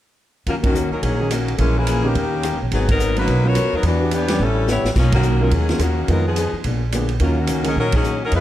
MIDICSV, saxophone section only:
0, 0, Header, 1, 2, 480
1, 0, Start_track
1, 0, Key_signature, -6, "minor"
1, 0, Tempo, 280899
1, 793, Time_signature, 4, 2, 24, 8
1, 14361, End_track
2, 0, Start_track
2, 0, Title_t, "Saxophone section"
2, 0, Program_c, 0, 65
2, 813, Note_on_c, 0, 58, 63
2, 813, Note_on_c, 0, 61, 63
2, 814, Note_on_c, 0, 54, 58
2, 817, Note_on_c, 0, 65, 69
2, 939, Note_off_c, 0, 58, 0
2, 939, Note_off_c, 0, 61, 0
2, 940, Note_off_c, 0, 54, 0
2, 943, Note_off_c, 0, 65, 0
2, 1092, Note_on_c, 0, 58, 65
2, 1095, Note_on_c, 0, 66, 76
2, 1096, Note_on_c, 0, 51, 68
2, 1101, Note_on_c, 0, 61, 64
2, 1536, Note_off_c, 0, 58, 0
2, 1537, Note_off_c, 0, 51, 0
2, 1537, Note_off_c, 0, 61, 0
2, 1537, Note_off_c, 0, 66, 0
2, 1558, Note_on_c, 0, 61, 64
2, 1560, Note_on_c, 0, 63, 63
2, 1564, Note_on_c, 0, 70, 71
2, 1567, Note_on_c, 0, 54, 63
2, 1718, Note_off_c, 0, 61, 0
2, 1726, Note_off_c, 0, 54, 0
2, 1738, Note_on_c, 0, 61, 67
2, 1739, Note_off_c, 0, 63, 0
2, 1741, Note_off_c, 0, 70, 0
2, 1747, Note_on_c, 0, 54, 65
2, 1752, Note_on_c, 0, 68, 79
2, 1758, Note_on_c, 0, 63, 67
2, 2227, Note_off_c, 0, 61, 0
2, 2232, Note_off_c, 0, 54, 0
2, 2234, Note_off_c, 0, 68, 0
2, 2237, Note_off_c, 0, 63, 0
2, 2244, Note_on_c, 0, 66, 68
2, 2246, Note_on_c, 0, 51, 61
2, 2247, Note_on_c, 0, 58, 60
2, 2247, Note_on_c, 0, 61, 64
2, 2643, Note_off_c, 0, 66, 0
2, 2644, Note_off_c, 0, 51, 0
2, 2645, Note_off_c, 0, 58, 0
2, 2645, Note_off_c, 0, 61, 0
2, 2671, Note_on_c, 0, 69, 59
2, 2718, Note_off_c, 0, 69, 0
2, 2722, Note_on_c, 0, 61, 68
2, 2724, Note_on_c, 0, 56, 68
2, 2724, Note_on_c, 0, 64, 68
2, 2732, Note_on_c, 0, 70, 79
2, 3001, Note_off_c, 0, 61, 0
2, 3011, Note_off_c, 0, 56, 0
2, 3011, Note_off_c, 0, 64, 0
2, 3015, Note_off_c, 0, 70, 0
2, 3021, Note_on_c, 0, 61, 70
2, 3026, Note_on_c, 0, 58, 76
2, 3029, Note_on_c, 0, 52, 77
2, 3029, Note_on_c, 0, 68, 88
2, 3495, Note_off_c, 0, 61, 0
2, 3498, Note_off_c, 0, 58, 0
2, 3499, Note_off_c, 0, 52, 0
2, 3499, Note_off_c, 0, 68, 0
2, 3515, Note_on_c, 0, 58, 72
2, 3522, Note_on_c, 0, 51, 69
2, 3527, Note_on_c, 0, 67, 83
2, 3535, Note_on_c, 0, 61, 70
2, 4463, Note_off_c, 0, 58, 0
2, 4466, Note_off_c, 0, 51, 0
2, 4469, Note_off_c, 0, 67, 0
2, 4473, Note_off_c, 0, 61, 0
2, 4655, Note_on_c, 0, 68, 85
2, 4658, Note_on_c, 0, 59, 70
2, 4662, Note_on_c, 0, 63, 72
2, 4671, Note_on_c, 0, 54, 72
2, 4918, Note_off_c, 0, 68, 0
2, 4920, Note_off_c, 0, 59, 0
2, 4922, Note_off_c, 0, 63, 0
2, 4927, Note_off_c, 0, 54, 0
2, 4972, Note_on_c, 0, 54, 79
2, 4979, Note_on_c, 0, 70, 98
2, 4980, Note_on_c, 0, 59, 79
2, 4983, Note_on_c, 0, 63, 77
2, 5432, Note_off_c, 0, 54, 0
2, 5435, Note_off_c, 0, 70, 0
2, 5436, Note_off_c, 0, 59, 0
2, 5437, Note_off_c, 0, 63, 0
2, 5454, Note_on_c, 0, 71, 89
2, 5459, Note_on_c, 0, 54, 77
2, 5464, Note_on_c, 0, 58, 76
2, 5467, Note_on_c, 0, 63, 80
2, 5880, Note_off_c, 0, 71, 0
2, 5883, Note_off_c, 0, 54, 0
2, 5886, Note_off_c, 0, 58, 0
2, 5888, Note_off_c, 0, 63, 0
2, 5928, Note_on_c, 0, 73, 95
2, 5934, Note_on_c, 0, 70, 81
2, 5936, Note_on_c, 0, 66, 83
2, 5938, Note_on_c, 0, 59, 85
2, 6378, Note_off_c, 0, 59, 0
2, 6390, Note_off_c, 0, 73, 0
2, 6393, Note_off_c, 0, 70, 0
2, 6394, Note_off_c, 0, 66, 0
2, 6399, Note_on_c, 0, 59, 75
2, 6401, Note_on_c, 0, 54, 75
2, 6410, Note_on_c, 0, 63, 77
2, 6414, Note_on_c, 0, 70, 83
2, 6568, Note_off_c, 0, 59, 0
2, 6576, Note_off_c, 0, 54, 0
2, 6580, Note_off_c, 0, 63, 0
2, 6582, Note_off_c, 0, 70, 0
2, 6586, Note_on_c, 0, 62, 74
2, 6588, Note_on_c, 0, 59, 70
2, 6588, Note_on_c, 0, 66, 82
2, 6594, Note_on_c, 0, 52, 68
2, 7021, Note_off_c, 0, 62, 0
2, 7022, Note_off_c, 0, 59, 0
2, 7022, Note_off_c, 0, 66, 0
2, 7025, Note_off_c, 0, 52, 0
2, 7052, Note_on_c, 0, 62, 73
2, 7059, Note_on_c, 0, 67, 80
2, 7061, Note_on_c, 0, 52, 68
2, 7072, Note_on_c, 0, 59, 74
2, 7526, Note_off_c, 0, 62, 0
2, 7530, Note_off_c, 0, 67, 0
2, 7531, Note_off_c, 0, 52, 0
2, 7536, Note_off_c, 0, 59, 0
2, 7549, Note_on_c, 0, 64, 71
2, 7554, Note_on_c, 0, 69, 85
2, 7558, Note_on_c, 0, 55, 76
2, 7559, Note_on_c, 0, 61, 71
2, 8015, Note_off_c, 0, 64, 0
2, 8017, Note_off_c, 0, 69, 0
2, 8019, Note_off_c, 0, 55, 0
2, 8020, Note_off_c, 0, 61, 0
2, 8039, Note_on_c, 0, 73, 83
2, 8041, Note_on_c, 0, 64, 69
2, 8042, Note_on_c, 0, 59, 68
2, 8049, Note_on_c, 0, 67, 68
2, 8379, Note_off_c, 0, 73, 0
2, 8380, Note_off_c, 0, 64, 0
2, 8381, Note_off_c, 0, 59, 0
2, 8385, Note_off_c, 0, 67, 0
2, 8497, Note_on_c, 0, 63, 59
2, 8502, Note_on_c, 0, 58, 64
2, 8505, Note_on_c, 0, 65, 72
2, 8513, Note_on_c, 0, 61, 66
2, 8759, Note_off_c, 0, 63, 0
2, 8762, Note_off_c, 0, 58, 0
2, 8764, Note_off_c, 0, 61, 0
2, 8764, Note_off_c, 0, 65, 0
2, 8782, Note_on_c, 0, 51, 72
2, 8782, Note_on_c, 0, 58, 68
2, 8784, Note_on_c, 0, 61, 66
2, 8790, Note_on_c, 0, 66, 75
2, 9223, Note_off_c, 0, 51, 0
2, 9223, Note_off_c, 0, 58, 0
2, 9224, Note_off_c, 0, 61, 0
2, 9227, Note_off_c, 0, 66, 0
2, 9270, Note_on_c, 0, 63, 65
2, 9273, Note_on_c, 0, 54, 64
2, 9276, Note_on_c, 0, 70, 73
2, 9279, Note_on_c, 0, 61, 64
2, 9418, Note_off_c, 0, 63, 0
2, 9423, Note_off_c, 0, 61, 0
2, 9426, Note_off_c, 0, 54, 0
2, 9438, Note_on_c, 0, 63, 63
2, 9444, Note_on_c, 0, 61, 64
2, 9446, Note_on_c, 0, 54, 66
2, 9450, Note_on_c, 0, 68, 77
2, 9453, Note_off_c, 0, 70, 0
2, 9919, Note_off_c, 0, 63, 0
2, 9921, Note_off_c, 0, 61, 0
2, 9923, Note_off_c, 0, 54, 0
2, 9924, Note_off_c, 0, 68, 0
2, 9934, Note_on_c, 0, 58, 61
2, 9935, Note_on_c, 0, 66, 72
2, 9938, Note_on_c, 0, 51, 61
2, 9945, Note_on_c, 0, 61, 60
2, 10373, Note_off_c, 0, 58, 0
2, 10374, Note_off_c, 0, 66, 0
2, 10375, Note_off_c, 0, 51, 0
2, 10379, Note_off_c, 0, 61, 0
2, 10427, Note_on_c, 0, 54, 67
2, 10431, Note_on_c, 0, 59, 69
2, 10433, Note_on_c, 0, 63, 67
2, 10435, Note_on_c, 0, 70, 79
2, 10687, Note_off_c, 0, 59, 0
2, 10689, Note_off_c, 0, 63, 0
2, 10703, Note_off_c, 0, 54, 0
2, 10703, Note_on_c, 0, 68, 78
2, 10707, Note_off_c, 0, 70, 0
2, 10708, Note_on_c, 0, 59, 66
2, 10709, Note_on_c, 0, 53, 64
2, 10710, Note_on_c, 0, 63, 67
2, 11142, Note_off_c, 0, 68, 0
2, 11145, Note_off_c, 0, 53, 0
2, 11145, Note_off_c, 0, 59, 0
2, 11146, Note_off_c, 0, 63, 0
2, 12333, Note_on_c, 0, 65, 74
2, 12338, Note_on_c, 0, 61, 61
2, 12344, Note_on_c, 0, 58, 59
2, 12345, Note_on_c, 0, 54, 60
2, 12595, Note_off_c, 0, 65, 0
2, 12597, Note_off_c, 0, 61, 0
2, 12601, Note_off_c, 0, 54, 0
2, 12601, Note_off_c, 0, 58, 0
2, 12626, Note_on_c, 0, 58, 66
2, 12629, Note_on_c, 0, 66, 81
2, 12637, Note_on_c, 0, 61, 71
2, 12642, Note_on_c, 0, 51, 68
2, 13087, Note_off_c, 0, 61, 0
2, 13095, Note_off_c, 0, 58, 0
2, 13097, Note_off_c, 0, 66, 0
2, 13101, Note_on_c, 0, 54, 68
2, 13101, Note_on_c, 0, 63, 65
2, 13103, Note_off_c, 0, 51, 0
2, 13108, Note_on_c, 0, 61, 73
2, 13112, Note_on_c, 0, 70, 81
2, 13270, Note_off_c, 0, 54, 0
2, 13270, Note_off_c, 0, 63, 0
2, 13273, Note_off_c, 0, 61, 0
2, 13275, Note_off_c, 0, 70, 0
2, 13292, Note_on_c, 0, 63, 74
2, 13301, Note_on_c, 0, 61, 76
2, 13305, Note_on_c, 0, 54, 77
2, 13310, Note_on_c, 0, 70, 88
2, 13553, Note_off_c, 0, 63, 0
2, 13558, Note_off_c, 0, 61, 0
2, 13560, Note_off_c, 0, 54, 0
2, 13563, Note_off_c, 0, 70, 0
2, 13578, Note_on_c, 0, 61, 77
2, 13582, Note_on_c, 0, 68, 88
2, 13583, Note_on_c, 0, 54, 76
2, 13584, Note_on_c, 0, 63, 78
2, 14017, Note_off_c, 0, 61, 0
2, 14019, Note_off_c, 0, 54, 0
2, 14019, Note_off_c, 0, 68, 0
2, 14020, Note_off_c, 0, 63, 0
2, 14079, Note_on_c, 0, 61, 76
2, 14086, Note_on_c, 0, 63, 79
2, 14090, Note_on_c, 0, 54, 79
2, 14092, Note_on_c, 0, 70, 92
2, 14242, Note_off_c, 0, 63, 0
2, 14250, Note_off_c, 0, 61, 0
2, 14255, Note_off_c, 0, 54, 0
2, 14256, Note_off_c, 0, 70, 0
2, 14263, Note_on_c, 0, 63, 81
2, 14264, Note_on_c, 0, 65, 82
2, 14266, Note_on_c, 0, 71, 94
2, 14274, Note_on_c, 0, 56, 77
2, 14361, Note_off_c, 0, 56, 0
2, 14361, Note_off_c, 0, 63, 0
2, 14361, Note_off_c, 0, 65, 0
2, 14361, Note_off_c, 0, 71, 0
2, 14361, End_track
0, 0, End_of_file